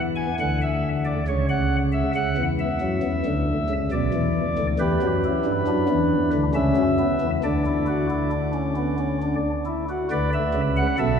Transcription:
0.00 0.26 E2 medium
0.00 0.26 E3 medium
0.16 0.35 G#5 medium
0.40 1.15 D2 medium
0.40 1.15 D3 medium
0.40 0.58 F#5 medium
0.62 0.89 E5 medium
1.05 1.24 D5 medium
1.28 2.03 C#2 medium
1.28 2.03 C#3 medium
1.28 1.46 C#5 medium
1.49 1.76 F#5 medium
1.92 2.11 E5 medium
2.15 2.34 C#2 medium
2.15 2.34 C#3 medium
2.15 2.43 F#5 medium
2.37 2.64 E2 medium
2.37 2.65 E3 medium
2.60 3.73 E5 medium
2.81 3.00 F#2 medium
2.81 3.00 F#3 medium
3.03 3.22 E2 medium
3.03 3.22 E3 medium
3.25 3.52 D2 medium
3.25 3.53 D3 medium
3.70 3.88 C#2 medium
3.70 3.88 C#3 medium
3.91 4.10 B1 medium
3.91 4.10 B2 medium
3.91 4.67 D5 medium
4.14 4.41 E2 medium
4.14 4.41 E3 medium
4.58 4.76 D2 medium
4.58 4.76 D3 medium
4.80 4.98 E2 medium
4.80 4.98 E3 medium
4.80 5.06 G4 medium
4.80 6.30 B4 medium
5.02 5.29 F#2 medium
5.02 5.29 F#3 medium
5.24 5.51 E4 medium
5.45 5.64 G2 medium
5.45 5.64 G3 medium
5.67 5.86 F#2 medium
5.67 5.86 F#3 medium
5.67 6.42 D4 medium
5.89 6.16 E2 medium
5.89 6.16 E3 medium
6.33 6.51 D2 medium
6.33 6.52 D3 medium
6.55 6.73 C#2 medium
6.55 6.73 C#3 medium
6.55 6.82 C#4 medium
6.55 7.30 E5 medium
6.77 7.04 F#2 medium
6.77 7.04 F#3 medium
6.99 7.26 B3 medium
7.21 7.40 E2 medium
7.21 7.40 E3 medium
7.44 9.36 D2 medium
7.44 9.35 D3 medium
7.44 7.62 D4 medium
7.44 9.35 D5 medium
7.66 7.85 E4 medium
7.87 8.06 F#4 medium
8.10 8.29 E4 medium
8.31 8.51 D4 medium
8.54 8.74 C#4 medium
8.76 8.96 B3 medium
8.99 9.18 C#4 medium
9.22 9.49 D4 medium
9.66 9.85 E4 medium
9.89 10.08 F#4 medium
10.11 10.38 D2 medium
10.11 10.38 D3 medium
10.11 10.87 B4 medium
10.11 10.30 D5 medium
10.33 10.60 E5 medium
10.54 10.82 C#2 medium
10.54 10.82 C#3 medium
10.77 10.96 F#5 medium
10.98 11.20 B1 medium
10.98 11.20 B2 medium
10.98 11.20 A4 medium
10.98 11.18 E5 medium

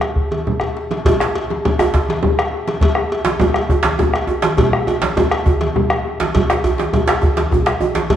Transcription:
0.01 bombo rim medium
0.01 cowbell soft
0.16 bombo low medium
0.16 high conga soft
0.31 cowbell soft
0.31 high conga medium
0.31 djembe bass soft
0.46 djembe bass soft
0.46 low conga medium
0.60 bombo rim medium
0.60 cowbell soft
0.60 high conga soft
0.60 djembe bass medium
0.77 djembe slap soft
0.91 cowbell soft
0.91 djembe slap medium
0.91 high conga medium
1.05 bombo low medium
1.05 cowbell medium
1.05 high conga soft
1.05 djembe tone loud
1.05 low conga medium
1.05 djembe bass medium
1.20 bombo rim medium
1.20 djembe slap medium
1.20 djembe tone medium
1.35 bombo rim soft
1.35 cowbell medium
1.50 djembe slap medium
1.50 high conga medium
1.65 bombo rim soft
1.65 cowbell medium
1.65 djembe slap soft
1.65 low conga medium
1.65 djembe bass medium
1.79 bombo rim medium
1.79 cowbell medium
1.79 djembe tone loud
1.94 bombo low medium
1.94 djembe slap medium
2.08 cowbell soft
2.08 djembe slap medium
2.08 high conga medium
2.08 djembe tone medium
2.23 bombo rim soft
2.23 low conga medium
2.23 djembe bass medium
2.39 bombo rim medium
2.39 cowbell medium
2.53 high conga soft
2.68 cowbell soft
2.68 djembe slap medium
2.68 high conga medium
2.81 bombo low loud
2.81 cowbell medium
2.81 high conga soft
2.81 low conga medium
2.81 djembe bass medium
2.95 bombo rim medium
2.95 djembe tone medium
3.10 bombo rim soft
3.10 cowbell medium
3.25 djembe slap loud
3.25 djembe slap medium
3.25 high conga medium
3.40 bombo rim soft
3.40 cowbell medium
3.40 djembe tone medium
3.40 low conga medium
3.40 djembe bass medium
3.54 bombo rim medium
3.54 cowbell medium
3.69 bombo low loud
3.69 djembe tone medium
3.83 djembe slap loud
3.83 high conga medium
3.85 cowbell medium
3.85 djembe slap medium
3.85 djembe tone medium
3.99 bombo rim soft
3.99 djembe tone medium
3.99 low conga medium
3.99 djembe bass medium
4.14 bombo rim medium
4.14 cowbell medium
4.28 djembe tone medium
4.28 high conga soft
4.42 cowbell medium
4.42 djembe slap loud
4.42 djembe slap medium
4.42 high conga medium
4.58 bombo low loud
4.58 cowbell medium
4.58 djembe tone medium
4.58 high conga soft
4.58 djembe bass medium
4.58 low conga medium
4.73 bombo rim medium
4.73 djembe tone medium
4.87 bombo rim soft
4.87 cowbell medium
4.87 djembe tone medium
5.02 djembe slap loud
5.02 djembe slap medium
5.02 high conga medium
5.17 cowbell medium
5.17 djembe tone medium
5.17 djembe bass medium
5.17 low conga medium
5.31 bombo rim medium
5.31 cowbell medium
5.46 bombo low loud
5.46 djembe tone medium
5.61 cowbell medium
5.61 djembe slap medium
5.61 djembe tone medium
5.61 high conga medium
5.76 bombo rim soft
5.76 djembe bass medium
5.76 low conga medium
5.90 bombo rim medium
5.90 cowbell soft
6.06 high conga soft
6.20 cowbell medium
6.20 djembe slap medium
6.20 high conga medium
6.34 bombo low loud
6.34 cowbell medium
6.34 djembe slap soft
6.34 djembe tone medium
6.34 djembe bass medium
6.34 low conga medium
6.49 bombo rim medium
6.49 djembe slap soft
6.49 djembe slap medium
6.49 djembe tone medium
6.64 cowbell medium
6.64 high conga soft
6.64 djembe bass medium
6.78 djembe slap medium
6.78 high conga medium
6.93 bombo rim soft
6.93 cowbell medium
6.93 djembe tone medium
6.93 djembe bass medium
6.93 low conga medium
7.07 bombo rim medium
7.07 cowbell medium
7.07 djembe slap loud
7.07 djembe slap soft
7.22 bombo low loud
7.22 djembe tone medium
7.22 high conga soft
7.37 cowbell soft
7.37 djembe slap medium
7.37 high conga soft
7.37 djembe tone medium
7.51 bombo rim soft
7.51 djembe slap soft
7.51 high conga soft
7.51 djembe bass medium
7.51 low conga medium
7.51 djembe bass medium
7.66 bombo rim medium
7.66 cowbell soft
7.66 djembe slap medium
7.66 low conga soft
7.81 bombo rim soft
7.81 djembe slap soft
7.81 djembe tone medium
7.81 high conga medium
7.95 cowbell soft
7.95 djembe slap medium
7.95 high conga medium
8.10 bombo low loud
8.10 cowbell medium
8.10 djembe tone medium
8.10 high conga soft
8.10 low conga medium
8.10 djembe bass medium

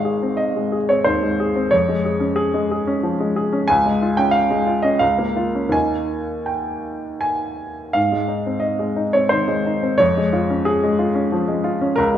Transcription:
0.00 1.68 G#1 soft
0.00 0.16 G#3 soft
0.00 0.38 F5 medium
0.05 0.32 G#4 soft
0.23 0.76 C4 soft
0.37 0.88 D#5 soft
0.56 0.83 G#3 soft
0.72 0.99 G#4 soft
0.89 1.16 C4 soft
0.89 1.06 C#5 medium
1.04 1.33 D#2 soft
1.04 1.72 C5 medium
1.22 1.49 G#3 soft
1.40 1.66 G#4 soft
1.56 1.72 C4 soft
1.71 3.64 F2 soft
1.71 2.36 C#5 medium
1.88 2.14 G#3 soft
2.05 2.31 G#4 soft
2.20 2.72 C#4 soft
2.36 2.70 G#4 medium
2.54 2.80 G#3 soft
2.71 2.97 G#4 soft
2.87 3.13 C#4 soft
3.03 3.29 F3 soft
3.20 3.46 G#3 soft
3.36 3.62 G#4 soft
3.53 3.69 C#4 soft
3.68 4.98 C#2 medium
3.68 4.17 G#5 medium
3.86 4.12 G#3 soft
4.02 4.28 F4 soft
4.17 4.71 C#4 soft
4.17 4.34 G5 medium
4.31 4.83 F5 medium
4.50 4.78 G#3 soft
4.67 4.94 F4 soft
4.82 5.01 C#4 soft
4.82 5.01 D#5 medium
4.99 5.71 C#2 soft
4.99 5.72 F5 medium
5.18 5.47 A#3 soft
5.36 5.66 F4 soft
5.55 5.74 C#4 soft
5.69 7.90 D#2 soft
5.69 7.91 A#3 soft
5.69 7.92 D#4 soft
5.69 6.48 G#5 medium
6.46 7.22 G5 soft
7.21 7.95 G#5 medium
7.93 9.95 G#2 soft
7.93 8.63 F5 medium
8.12 8.40 G#3 soft
8.28 8.57 D#4 soft
8.46 9.02 C4 soft
8.60 9.14 D#5 soft
8.79 9.08 G#3 soft
8.96 9.25 D#4 soft
9.13 9.42 C4 soft
9.13 9.32 C#5 medium
9.29 9.59 D#3 soft
9.29 9.98 C5 medium
9.48 9.76 G#3 soft
9.66 9.93 D#4 soft
9.83 10.00 C4 soft
9.98 11.93 F2 soft
9.98 10.66 C#5 medium
10.17 10.44 G#3 soft
10.33 10.60 F4 soft
10.50 11.03 C#4 soft
10.65 11.32 G#4 medium
10.84 11.10 G#3 soft
10.99 11.26 F4 soft
11.15 11.42 C#4 soft
11.32 11.58 F3 soft
11.48 11.75 G#3 soft
11.64 11.91 F4 soft
11.81 11.97 C#4 soft
11.96 12.18 C#2 medium
11.96 12.18 A#4 medium
12.14 12.18 G#3 soft

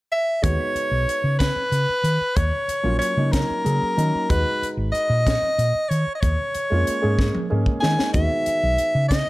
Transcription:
0.12 0.44 E5 medium
0.42 0.57 D#2 medium
0.42 1.57 G#3 medium
0.42 1.57 B3 medium
0.42 1.57 D#4 medium
0.42 1.57 F#4 medium
0.42 1.38 C#5 medium
0.42 kick loud
0.42 closed hi-hat medium
0.75 muted fingered electric bass stroke soft
0.75 closed hi-hat medium
0.91 1.05 B1 medium
1.09 closed hi-hat medium
1.24 1.50 C#3 medium
1.39 2.37 B4 medium
1.39 kick medium
1.39 snare loud
1.39 closed hi-hat medium
1.56 muted fingered electric bass stroke soft
1.72 1.85 C#3 medium
1.72 closed hi-hat medium
1.89 muted fingered electric bass stroke soft
2.04 2.17 D#3 medium
2.04 closed hi-hat medium
2.21 muted fingered electric bass stroke soft
2.36 2.50 D#2 medium
2.36 2.98 C#5 medium
2.36 kick loud
2.36 closed hi-hat medium
2.68 muted fingered electric bass stroke soft
2.68 closed hi-hat medium
2.83 2.97 A#1 medium
2.83 3.12 F#3 medium
2.83 3.13 A#3 medium
2.83 3.13 C#4 medium
2.83 3.13 F4 medium
2.98 3.33 C#5 medium
2.98 closed hi-hat medium
3.17 3.43 C#3 medium
3.17 3.60 F#3 medium
3.17 3.60 A#3 medium
3.17 3.60 C#4 medium
3.17 3.60 D#4 medium
3.32 4.31 A#4 medium
3.32 kick medium
3.32 snare loud
3.32 closed hi-hat medium
3.50 muted fingered electric bass stroke soft
3.64 3.79 C#3 medium
3.64 3.93 F#3 medium
3.64 3.93 A#3 medium
3.64 3.94 C#4 medium
3.64 3.94 G#4 medium
3.64 closed hi-hat medium
3.82 muted fingered electric bass stroke soft
3.97 4.11 D#3 medium
3.97 4.25 F#3 medium
3.97 4.26 A#3 medium
3.97 4.26 C#4 medium
3.97 4.26 D#4 medium
3.97 closed hi-hat medium
4.15 muted fingered electric bass stroke soft
4.30 4.43 D#2 medium
4.30 5.43 G#3 medium
4.30 5.44 D#4 medium
4.30 5.43 F#4 medium
4.30 4.67 B4 medium
4.30 5.43 B4 medium
4.30 kick loud
4.30 closed hi-hat medium
4.62 muted fingered electric bass stroke soft
4.62 closed hi-hat medium
4.77 4.90 G#1 medium
4.92 5.90 D#5 medium
4.92 closed hi-hat soft
5.10 5.36 A#2 medium
5.27 kick medium
5.27 snare loud
5.27 closed hi-hat medium
5.42 muted fingered electric bass stroke soft
5.58 5.71 A#2 medium
5.58 closed hi-hat medium
5.74 muted fingered electric bass stroke soft
5.89 6.03 D#3 medium
5.89 6.14 C#5 medium
5.89 closed hi-hat medium
6.07 muted fingered electric bass stroke soft
6.15 6.22 D#5 medium
6.21 6.35 D#2 medium
6.21 7.50 C#5 medium
6.21 kick loud
6.21 closed hi-hat medium
6.55 muted fingered electric bass stroke soft
6.55 closed hi-hat medium
6.70 6.84 F2 medium
6.70 6.99 G#3 medium
6.70 6.99 A#3 medium
6.70 6.99 C#4 medium
6.70 6.99 F4 medium
6.87 muted fingered electric bass stroke soft
6.87 closed hi-hat medium
7.02 7.29 G#2 medium
7.02 7.45 G#3 medium
7.02 7.45 A#3 medium
7.02 7.45 C#4 medium
7.02 7.45 G#4 medium
7.19 kick medium
7.19 snare medium
7.35 muted fingered electric bass stroke soft
7.35 high tom medium
7.50 7.64 G#2 medium
7.50 7.79 G#3 medium
7.50 7.79 A#3 medium
7.50 7.79 C#4 medium
7.50 7.79 G#4 medium
7.66 muted fingered electric bass stroke soft
7.66 kick medium
7.80 7.96 D#3 medium
7.80 8.11 G#3 medium
7.80 8.11 A#3 medium
7.80 8.11 C#4 medium
7.80 8.11 D#4 medium
7.80 8.11 G#5 medium
7.80 snare medium
7.99 muted fingered electric bass stroke soft
7.99 snare medium
8.13 8.27 D#2 medium
8.13 9.29 D#3 medium
8.13 9.28 G#3 medium
8.13 9.28 B3 medium
8.13 9.29 F#4 medium
8.13 9.06 E5 medium
8.13 kick loud
8.13 closed hi-hat medium
8.46 muted fingered electric bass stroke soft
8.46 closed hi-hat medium
8.63 8.76 B1 medium
8.78 closed hi-hat medium
8.95 9.21 C#3 medium
9.09 9.29 D#5 medium
9.09 kick medium
9.09 snare loud
9.09 closed hi-hat medium

